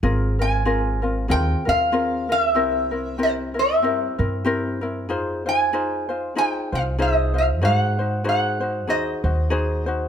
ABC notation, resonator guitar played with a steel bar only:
X:1
M:4/4
L:1/8
Q:"Swing" 1/4=95
K:Ab
V:1 name="Resonator guitar played with a steel bar"
z a2 z g f2 _f- | _f2 c =e4 z | z a3 g f e f | _g2 g2 e3 z |]